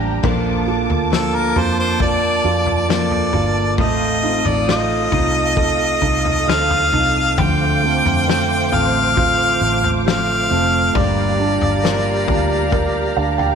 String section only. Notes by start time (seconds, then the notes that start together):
Already playing: G4 G5 A#5
0.23 A#3 A5 D6
3.77 A4 F5 D#6
7.39 C5 D6
10.96 G4 F5 A#5